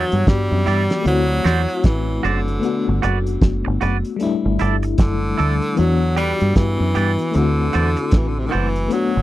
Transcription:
0.00 1.01 E3 medium
0.00 0.30 F#3 loud
0.00 1.02 B3 medium
0.00 1.03 D4 medium
0.00 1.04 F#4 medium
0.11 0.26 G2 medium
0.11 closed hi-hat soft
0.27 0.48 G2 medium
0.27 1.06 G3 loud
0.27 kick loud
0.27 snare loud
0.27 closed hi-hat medium
0.52 0.65 F#2 medium
0.66 0.87 G2 medium
0.66 0.82 E4 medium
0.66 0.82 G4 medium
0.66 0.83 D5 medium
0.66 closed hi-hat medium
0.90 snare medium
0.90 closed hi-hat medium
1.02 1.40 D2 loud
1.02 2.58 A3 medium
1.02 2.59 C4 medium
1.02 closed hi-hat medium
1.06 1.87 F#3 loud
1.06 2.60 E4 medium
1.06 2.61 F#4 medium
1.44 1.65 E2 medium
1.44 1.60 F#4 medium
1.44 1.61 C5 loud
1.44 1.61 D5 loud
1.44 snare medium
1.44 closed hi-hat medium
1.69 muted clean electric guitar stroke soft
1.69 closed hi-hat soft
1.84 2.19 A1 medium
1.84 2.26 E3 loud
1.84 kick loud
1.84 snare loud
1.84 closed hi-hat loud
2.23 2.58 F#1 loud
2.23 3.03 D3 medium
2.23 2.39 F#4 medium
2.23 2.39 C5 medium
2.23 2.40 D5 loud
2.23 closed hi-hat medium
2.48 closed hi-hat soft
2.60 4.15 A3 medium
2.60 4.16 B3 medium
2.60 4.17 D4 medium
2.60 closed hi-hat loud
2.65 4.18 F#4 medium
2.88 3.01 G1 loud
3.02 3.37 F#1 loud
3.02 3.18 F#4 medium
3.02 3.18 B4 medium
3.02 3.19 D5 medium
3.02 closed hi-hat medium
3.26 closed hi-hat medium
3.42 3.62 F#1 medium
3.42 kick loud
3.42 snare loud
3.42 closed hi-hat medium
3.65 3.80 G1 loud
3.65 muted clean electric guitar stroke medium
3.81 4.02 F#1 loud
3.81 3.96 F#4 medium
3.81 3.97 B4 medium
3.81 3.97 D5 loud
3.81 closed hi-hat medium
4.05 closed hi-hat medium
4.16 5.72 G3 medium
4.16 5.73 A3 medium
4.16 closed hi-hat medium
4.21 5.74 D4 medium
4.21 5.75 E4 loud
4.45 4.58 G1 medium
4.59 4.94 G1 loud
4.59 4.75 E4 medium
4.59 4.75 A4 medium
4.59 4.76 D5 medium
4.59 closed hi-hat medium
4.83 muted clean electric guitar stroke medium
4.83 closed hi-hat soft
4.98 5.33 F#1 medium
4.98 5.80 D3 medium
4.98 kick loud
4.98 snare loud
4.98 closed hi-hat loud
5.38 5.59 D2 medium
5.38 5.53 E4 medium
5.38 5.54 A4 loud
5.38 5.54 D5 loud
5.38 closed hi-hat medium
5.62 closed hi-hat medium
5.74 7.30 E3 medium
5.74 6.16 F#3 loud
5.74 7.31 B3 medium
5.74 7.32 D4 medium
5.74 closed hi-hat medium
5.79 6.32 E2 medium
5.79 7.33 F#4 medium
6.16 6.58 G3 loud
6.16 6.32 G4 medium
6.16 6.32 B4 medium
6.16 6.33 D5 medium
6.16 closed hi-hat medium
6.40 6.54 G2 medium
6.40 closed hi-hat medium
6.56 6.77 G2 loud
6.56 7.37 E3 loud
6.56 kick loud
6.56 snare loud
6.56 closed hi-hat medium
6.80 6.93 F#2 medium
6.95 7.16 G2 medium
6.95 7.10 G4 medium
6.95 7.11 B4 medium
6.95 7.11 D5 loud
6.95 closed hi-hat medium
7.19 closed hi-hat medium
7.31 8.87 A3 medium
7.31 8.88 C4 medium
7.31 8.89 E4 medium
7.31 closed hi-hat medium
7.35 7.69 D2 loud
7.35 8.19 D3 loud
7.35 8.90 F#4 medium
7.73 7.95 E2 medium
7.73 7.89 F#4 medium
7.73 7.89 C5 medium
7.73 7.90 D5 medium
7.73 closed hi-hat medium
7.96 muted clean electric guitar stroke medium
7.96 closed hi-hat medium
8.11 8.47 A1 loud
8.11 kick loud
8.11 snare loud
8.11 closed hi-hat loud
8.17 8.30 E3 medium
8.28 8.40 D3 medium
8.39 8.48 C3 medium
8.46 8.48 D3 medium
8.46 8.55 D#3 medium
8.51 8.87 F#1 medium
8.51 8.94 E3 medium
8.51 8.67 F#4 medium
8.51 8.67 C5 loud
8.51 8.68 D5 medium
8.51 closed hi-hat medium
8.76 closed hi-hat medium
8.88 9.22 A3 medium
8.88 9.22 B3 medium
8.88 9.22 D4 medium
8.88 closed hi-hat loud
8.92 9.22 F#3 loud
8.92 9.22 F#4 medium
9.17 9.22 G1 medium

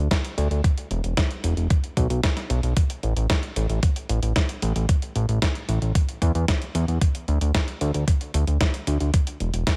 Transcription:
0.11 kick loud
0.11 snare loud
0.11 closed hi-hat medium
0.25 closed hi-hat soft
0.38 0.48 D2 loud
0.38 closed hi-hat medium
0.51 0.61 D2 medium
0.51 closed hi-hat soft
0.64 kick loud
0.64 closed hi-hat medium
0.78 closed hi-hat soft
0.91 1.01 E1 medium
0.91 closed hi-hat soft
1.04 1.14 E1 medium
1.04 closed hi-hat soft
1.17 kick loud
1.17 snare loud
1.17 closed hi-hat medium
1.31 closed hi-hat soft
1.44 1.54 E1 medium
1.44 closed hi-hat medium
1.57 1.67 E1 medium
1.57 closed hi-hat soft
1.70 kick loud
1.70 closed hi-hat medium
1.84 closed hi-hat soft
1.97 2.07 B1 medium
1.97 kick medium
1.97 closed hi-hat medium
2.10 2.21 B1 medium
2.10 closed hi-hat soft
2.24 kick loud
2.24 snare loud
2.24 closed hi-hat medium
2.37 snare soft
2.37 closed hi-hat soft
2.50 2.60 B1 loud
2.50 closed hi-hat medium
2.63 2.74 B1 medium
2.63 closed hi-hat soft
2.77 kick loud
2.77 closed hi-hat medium
2.90 closed hi-hat soft
3.03 3.14 A1 medium
3.03 closed hi-hat soft
3.16 3.27 A1 medium
3.16 closed hi-hat soft
3.30 kick loud
3.30 snare loud
3.30 closed hi-hat medium
3.43 closed hi-hat soft
3.56 3.67 A1 medium
3.56 closed hi-hat medium
3.70 3.80 A1 medium
3.70 closed hi-hat soft
3.83 kick loud
3.83 closed hi-hat medium
3.96 closed hi-hat soft
4.09 4.20 A1 medium
4.09 closed hi-hat medium
4.23 4.33 A1 medium
4.23 closed hi-hat soft
4.36 kick loud
4.36 snare loud
4.36 closed hi-hat medium
4.49 closed hi-hat soft
4.62 4.73 A1 loud
4.62 closed hi-hat medium
4.76 4.86 A1 medium
4.76 closed hi-hat soft
4.89 kick loud
4.89 closed hi-hat medium
5.02 closed hi-hat soft
5.16 5.26 A1 medium
5.16 closed hi-hat soft
5.29 5.39 A1 medium
5.29 closed hi-hat soft
5.42 kick loud
5.42 snare loud
5.42 closed hi-hat medium
5.55 closed hi-hat soft
5.69 5.79 A1 loud
5.69 closed hi-hat medium
5.82 5.92 A1 medium
5.82 closed hi-hat soft
5.95 kick loud
5.95 closed hi-hat medium
6.09 closed hi-hat soft
6.22 6.32 E2 medium
6.22 kick medium
6.22 closed hi-hat medium
6.35 6.45 E2 medium
6.35 closed hi-hat soft
6.48 kick loud
6.48 snare loud
6.48 closed hi-hat medium
6.62 closed hi-hat soft
6.75 6.85 E2 loud
6.75 closed hi-hat medium
6.88 6.99 E2 medium
6.88 closed hi-hat soft
7.01 kick loud
7.01 closed hi-hat medium
7.15 closed hi-hat soft
7.28 7.38 D2 medium
7.28 closed hi-hat soft
7.41 7.52 D2 medium
7.41 closed hi-hat soft
7.55 kick loud
7.55 snare loud
7.55 closed hi-hat medium
7.68 closed hi-hat soft
7.81 7.91 D2 loud
7.81 closed hi-hat medium
7.94 8.05 D2 medium
7.94 closed hi-hat soft
8.08 kick loud
8.08 closed hi-hat loud
8.21 closed hi-hat soft
8.34 8.45 D2 medium
8.34 closed hi-hat medium
8.47 8.58 D2 medium
8.47 closed hi-hat soft
8.61 kick loud
8.61 snare loud
8.61 closed hi-hat medium
8.74 closed hi-hat soft
8.87 8.98 D2 loud
8.87 closed hi-hat medium
9.00 9.11 D2 medium
9.00 closed hi-hat soft
9.14 kick loud
9.14 closed hi-hat medium
9.27 closed hi-hat soft
9.40 9.51 E1 medium
9.40 closed hi-hat soft
9.54 9.64 E1 medium
9.54 closed hi-hat soft
9.67 kick loud
9.67 snare loud
9.67 closed hi-hat loud

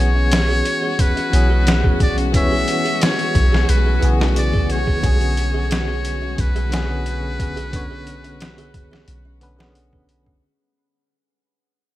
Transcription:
0.00 0.62 B1 loud
0.00 1.28 E3 medium
0.00 10.44 G#3 medium
0.00 1.28 B3 medium
0.00 1.29 C#4 medium
0.00 10.45 F#4 medium
0.00 1.30 G#4 medium
0.00 10.44 G#4 medium
0.00 1.02 C#5 loud
0.15 0.47 C#4 medium
0.32 snare loud
0.32 closed hi-hat medium
0.49 0.81 G#4 loud
0.65 closed hi-hat medium
0.82 0.92 G#4 medium
0.99 2.01 B4 loud
0.99 kick loud
0.99 closed hi-hat medium
1.16 1.48 C#4 medium
1.16 closed hi-hat soft
1.30 2.65 B1 medium
1.30 2.29 E3 medium
1.30 2.29 B3 medium
1.30 2.30 C#4 medium
1.30 closed hi-hat medium
1.35 2.31 G#4 medium
1.50 1.82 G#4 loud
1.67 snare loud
1.67 closed hi-hat medium
1.84 1.93 G#4 medium
1.84 kick loud
2.00 2.17 D5 medium
2.00 kick medium
2.00 closed hi-hat medium
2.18 2.50 C#4 medium
2.18 closed hi-hat soft
2.32 3.98 E3 medium
2.32 3.99 B3 medium
2.32 3.99 C#4 medium
2.32 3.04 E5 loud
2.32 kick loud
2.32 closed hi-hat medium
2.37 4.00 C#5 medium
2.52 2.83 G#4 loud
2.68 closed hi-hat medium
2.85 2.94 G#4 medium
2.85 closed hi-hat soft
3.02 3.71 C#5 loud
3.02 snare loud
3.02 closed hi-hat medium
3.18 3.50 C#4 medium
3.18 closed hi-hat soft
3.35 3.65 B1 medium
3.35 kick loud
3.35 closed hi-hat medium
3.52 3.84 G#4 loud
3.52 snare medium
3.69 3.99 B1 medium
3.69 4.10 B4 loud
3.69 closed hi-hat medium
3.86 3.95 G#4 medium
4.00 5.00 B1 medium
4.00 5.00 C#3 medium
4.00 4.98 E3 medium
4.00 4.99 B3 medium
4.00 closed hi-hat medium
4.05 5.01 G#4 loud
4.20 4.52 C#4 medium
4.20 snare loud
4.36 4.73 D5 loud
4.36 closed hi-hat medium
4.53 4.85 G#4 loud
4.53 kick medium
4.70 5.72 C#5 loud
4.70 closed hi-hat medium
4.87 4.96 G#4 medium
4.87 kick medium
5.01 6.35 B1 loud
5.01 6.67 D3 medium
5.01 6.68 B3 medium
5.01 6.69 C#4 medium
5.01 kick loud
5.01 closed hi-hat medium
5.06 6.69 G#4 medium
5.21 5.53 C#4 medium
5.21 closed hi-hat soft
5.37 closed hi-hat medium
5.54 5.87 G#4 loud
5.71 6.42 C#5 loud
5.71 snare loud
5.71 closed hi-hat medium
5.88 5.98 G#4 medium
6.05 closed hi-hat medium
6.22 6.54 C#4 medium
6.38 9.08 B1 loud
6.38 9.77 B4 loud
6.38 kick loud
6.38 closed hi-hat medium
6.56 6.88 G#4 loud
6.56 closed hi-hat soft
6.70 7.68 D3 medium
6.70 7.69 B3 medium
6.70 7.70 C#4 medium
6.70 snare loud
6.70 closed hi-hat medium
6.75 7.71 G#4 medium
6.89 6.99 G#4 medium
7.06 closed hi-hat medium
7.23 7.55 C#4 medium
7.40 kick medium
7.40 closed hi-hat medium
7.56 7.89 G#4 loud
7.56 closed hi-hat soft
7.71 9.37 D3 medium
7.71 9.38 B3 medium
7.71 9.38 C#4 medium
7.71 kick loud
7.71 closed hi-hat medium
7.76 9.39 C#5 medium
7.91 8.00 G#4 medium
8.07 closed hi-hat medium
8.24 8.56 C#4 medium
8.24 closed hi-hat soft
8.41 snare loud
8.41 closed hi-hat medium
8.58 8.90 G#4 loud
8.58 closed hi-hat soft
8.74 kick medium
8.74 closed hi-hat medium
8.91 9.01 G#4 medium
8.91 snare medium
9.08 10.40 B1 loud
9.08 closed hi-hat medium
9.25 9.57 C#4 medium
9.41 9.55 D3 medium
9.41 9.55 B3 medium
9.41 9.55 C#4 medium
9.41 9.56 B4 loud
9.41 closed hi-hat medium
9.57 10.38 D3 loud
9.57 10.39 B3 medium
9.57 10.40 C#4 medium
9.57 9.91 G#4 loud
9.57 snare loud
9.62 10.40 G#4 loud
9.75 closed hi-hat medium
9.93 10.02 G#4 medium
9.93 kick loud
10.09 closed hi-hat medium
10.26 10.43 C#4 medium
10.26 kick medium

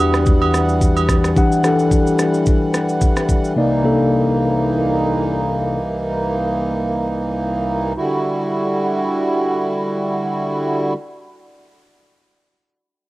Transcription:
0.00 1.32 E2 medium
0.00 1.36 E3 medium
0.00 7.93 E3 medium
0.00 3.53 G3 medium
0.00 1.36 D4 medium
0.00 3.58 F#4 medium
0.00 1.37 G4 medium
0.00 1.38 F#5 medium
0.00 3.53 F#5 medium
0.14 cross-stick medium
0.14 shaker soft
0.26 kick loud
0.26 shaker medium
0.42 high agogo medium
0.54 cross-stick medium
0.54 shaker medium
0.69 shaker soft
0.81 kick medium
0.81 shaker medium
0.97 high agogo medium
0.97 shaker medium
1.09 kick medium
1.09 cross-stick medium
1.09 shaker medium
1.24 cross-stick medium
1.24 shaker medium
1.36 1.59 E3 medium
1.36 1.59 D4 medium
1.36 1.59 G4 medium
1.36 1.60 F#5 medium
1.36 kick loud
1.36 shaker medium
1.52 shaker medium
1.63 2.52 E3 medium
1.63 2.53 D4 medium
1.63 2.53 G4 medium
1.63 2.53 A4 medium
1.63 cross-stick medium
1.63 shaker medium
1.79 shaker medium
1.91 kick medium
1.91 shaker medium
2.07 shaker medium
2.19 cross-stick medium
2.19 shaker medium
2.34 shaker soft
2.46 kick loud
2.46 shaker medium
2.74 cross-stick medium
2.74 shaker medium
2.89 shaker soft
3.01 kick medium
3.01 shaker medium
3.17 cross-stick medium
3.17 shaker medium
3.29 kick medium
3.29 shaker medium
3.44 shaker medium
3.56 7.93 C2 medium
3.56 3.79 C3 medium
3.56 7.93 A#3 medium
3.56 3.79 A#3 medium
3.56 7.93 D#4 medium
3.56 3.80 D#4 medium
3.56 3.80 D5 medium
3.83 4.72 C3 medium
3.83 4.73 A#3 medium
3.83 3.92 D4 medium
3.83 4.73 A4 medium
3.91 4.76 D#4 medium
7.97 10.93 D3 medium
7.97 10.93 G3 medium
7.97 10.93 E4 medium
7.97 10.93 F#4 medium

